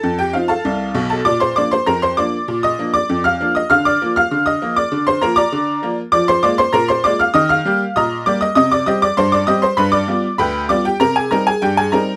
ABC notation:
X:1
M:2/4
L:1/16
Q:1/4=98
K:Bb
V:1 name="Honky-tonk piano"
[Aa] [Gg] [Ff] [Afa]4 [Aa] | [dd'] [cc'] [dd'] [cc'] [Bb] [cc'] [dd']2- | [dd'] [ee']2 [dd']2 [ff']2 [ee'] | [ff'] [dd']2 [ff']2 [ee']2 [dd']- |
[dd'] [cc'] [Bb] [dbd']4 z | [K:Cm] [dd'] [cc'] [dd'] [cc'] [Bb] [cc'] [dd'] [ff'] | [ee'] [ff']3 [ebe']2 [dd'] [ee'] | [ee'] [dd'] [ee'] [dd'] [cc'] [dd'] [ee'] [cc'] |
[=B=b] [dd']3 [Bgb]2 [dd'] [Gg] | [Bb] [Aa] [Bb] [Aa] [Gg] [Aa] [Bb]2 |]
V:2 name="Honky-tonk piano" clef=bass
F,,2 [F,CE]2 C,,2 [_C,,_C,]2 | B,,2 [F,B,D]2 F,,2 [F,B,D]2 | B,,2 [F,B,D]2 F,,2 [F,B,D]2 | D,2 [F,B,F]2 D,2 [F,B,F]2 |
D,2 [F,B,F]2 D,2 [F,B,F]2 | [K:Cm] F,2 [A,B,F]2 B,,2 [A,B,F]2 | E,2 [G,B,G]2 B,,2 [G,B,G]2 | C,2 [G,CG]2 G,,2 [G,CG]2 |
G,,2 [G,=B,F]2 D,,2 [G,B,F]2 | C,2 [G,CE]2 G,,2 [G,CE]2 |]